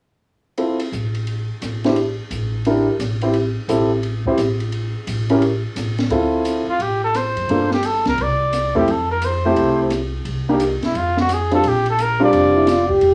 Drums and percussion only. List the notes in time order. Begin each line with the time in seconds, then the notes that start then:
0.58 ride
0.80 ride
0.93 hi-hat pedal
1.15 ride
1.27 ride
1.62 cross-stick, hi-hat pedal, ride
1.84 snare, ride
1.96 ride
2.31 hi-hat pedal, ride
2.65 ride
3.00 cross-stick, hi-hat pedal, ride
3.21 ride
3.33 ride
3.69 hi-hat pedal, ride
4.03 ride
4.25 kick
4.38 cross-stick, hi-hat pedal, ride
4.60 ride
4.72 ride
5.07 hi-hat pedal, ride
5.29 ride
5.42 ride
5.76 cross-stick, hi-hat pedal, ride
5.98 snare, ride
6.10 ride
6.45 hi-hat pedal, ride
6.80 ride
7.14 cross-stick, hi-hat pedal, ride
7.37 ride
7.49 ride
7.71 snare
7.83 hi-hat pedal, ride
8.05 snare, ride
8.18 ride
8.53 cross-stick, hi-hat pedal, ride
8.88 ride
9.22 hi-hat pedal, ride
9.56 ride
9.90 cross-stick, hi-hat pedal, ride
10.25 ride
10.60 hi-hat pedal, ride
10.83 snare, ride
10.95 ride
11.17 snare
11.29 cross-stick, hi-hat pedal, ride
11.51 ride
11.64 ride
11.86 ride
11.99 hi-hat pedal, ride
12.33 ride
12.67 cross-stick, snare, hi-hat pedal, ride
12.89 kick
13.01 ride